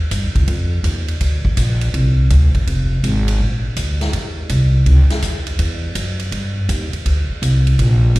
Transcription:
0.11 upright bass G2, kick, hi-hat pedal, ride
0.23 upright bass D#2
0.35 upright bass C#2, kick, ride
0.47 upright bass F2, kick, ride
0.84 upright bass D#2, kick, hi-hat pedal, ride
1.08 ride
1.20 upright bass D2, kick, ride
1.44 muted upright bass stroke, kick
1.57 upright bass A#1, kick, hi-hat pedal, ride
1.81 ride
1.94 upright bass C2, kick, ride
2.30 upright bass D2, kick, hi-hat pedal, ride
2.54 muted upright bass stroke, kick, ride
2.67 upright bass F1, kick, ride
3.03 upright bass G#1, kick, hi-hat pedal, ride
3.28 ride
3.40 upright bass A#1, kick
3.76 upright bass D2, kick, hi-hat pedal, ride
4.01 snare, ride
4.13 upright bass D#2, kick, ride
4.49 upright bass C2, kick, hi-hat pedal, ride
4.86 upright bass C#2, kick, ride
5.10 muted upright bass stroke, snare, ride
5.22 upright bass D#2, kick, hi-hat pedal, ride
5.47 ride
5.59 upright bass E2, kick, ride
5.95 upright bass F#2, kick, hi-hat pedal, ride
6.20 ride
6.32 upright bass G2, kick, ride
6.69 upright bass D#2, kick, hi-hat pedal, ride
6.93 muted upright bass stroke, ride
7.06 upright bass D2, kick, ride
7.29 muted upright bass stroke
7.42 upright bass C2, kick, hi-hat pedal, ride
7.67 ride
7.79 upright bass A#1, kick, ride
8.15 upright bass G#1, kick, hi-hat pedal, ride

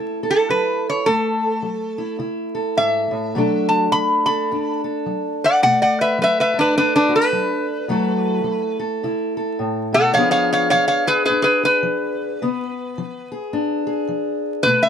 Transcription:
Already playing: steel-string acoustic guitar C#3 A3 E4 A4
0.23 steel-string acoustic guitar A4
0.30 resonator guitar played with a steel bar A4
0.49 steel-string acoustic guitar F#3, resonator guitar played with a steel bar B4
0.90 resonator guitar played with a steel bar C#5
1.06 steel-string acoustic guitar F#2 A3, resonator guitar played with a steel bar A4
1.62 steel-string acoustic guitar F#3
1.98 steel-string acoustic guitar E4
2.19 steel-string acoustic guitar C#3 E4
2.55 steel-string acoustic guitar A4
2.77 steel-string acoustic guitar G#2, resonator guitar played with a steel bar E5
3.11 steel-string acoustic guitar A2
3.35 steel-string acoustic guitar B2 F#3 A3 D4 A4
3.69 resonator guitar played with a steel bar A5
3.92 steel-string acoustic guitar F#3, resonator guitar played with a steel bar B5
4.26 steel-string acoustic guitar A4, resonator guitar played with a steel bar B5
4.51 steel-string acoustic guitar F#2 D4
4.84 steel-string acoustic guitar A4
5.06 steel-string acoustic guitar F#3
5.44 resonator guitar played with a steel bar D5 F#5
5.62 steel-string acoustic guitar B2 A3, resonator guitar played with a steel bar D5 F#5
5.82 resonator guitar played with a steel bar D5 F#5
6.01 resonator guitar played with a steel bar B4 E5
6.18 steel-string acoustic guitar F#3, resonator guitar played with a steel bar B4
6.24 resonator guitar played with a steel bar E5
6.40 resonator guitar played with a steel bar B4 E5
6.54 steel-string acoustic guitar A4
6.59 resonator guitar played with a steel bar D4 B4
6.76 steel-string acoustic guitar F#2 D4, resonator guitar played with a steel bar D4 B4
6.96 resonator guitar played with a steel bar D4 B4
7.09 steel-string acoustic guitar F#4
7.16 resonator guitar played with a steel bar B4
7.21 steel-string acoustic guitar A4
7.33 steel-string acoustic guitar F#3
7.88 steel-string acoustic guitar F#2 F#3 A3 E4 A4
8.44 steel-string acoustic guitar F#3
8.79 steel-string acoustic guitar A4
9.03 steel-string acoustic guitar C#3 E4
9.37 steel-string acoustic guitar A4
9.59 steel-string acoustic guitar A2
9.93 steel-string acoustic guitar B2, resonator guitar played with a steel bar A4 F#5
10.14 steel-string acoustic guitar C#3 F3 B3 D4, resonator guitar played with a steel bar C#5 F5
10.18 steel-string acoustic guitar G#4
10.31 resonator guitar played with a steel bar C#5 F5
10.53 resonator guitar played with a steel bar C#5 F5
10.70 steel-string acoustic guitar F3, resonator guitar played with a steel bar C#5 F5
10.88 resonator guitar played with a steel bar C#5 F5
11.07 resonator guitar played with a steel bar G#4 B4, steel-string acoustic guitar G#4
11.25 steel-string acoustic guitar G#2, resonator guitar played with a steel bar G#4 B4
11.30 steel-string acoustic guitar D4
11.42 resonator guitar played with a steel bar G#4 B4
11.63 steel-string acoustic guitar G#4, resonator guitar played with a steel bar B4
11.83 steel-string acoustic guitar F3
12.42 steel-string acoustic guitar C#3 B3
12.98 steel-string acoustic guitar F3
13.32 steel-string acoustic guitar G#4
13.53 steel-string acoustic guitar G#2 D4
13.87 steel-string acoustic guitar G#4
14.08 steel-string acoustic guitar F3
14.63 steel-string acoustic guitar B2 A3, resonator guitar played with a steel bar B4
14.83 resonator guitar played with a steel bar E5

